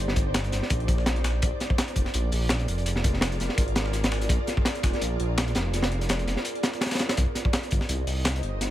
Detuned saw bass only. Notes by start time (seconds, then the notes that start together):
Already playing: G1
0.53 G1
0.70 A#1
1.43 A#1
1.96 F1
2.14 A#1
2.32 A#1
2.68 F1
3.40 F1
3.58 G#1
4.29 A#1
4.83 F1
5.02 A#1
5.20 A#1
5.56 F1
6.28 F1
7.18 C2
7.72 G1
7.89 C2
8.07 C2
8.43 G1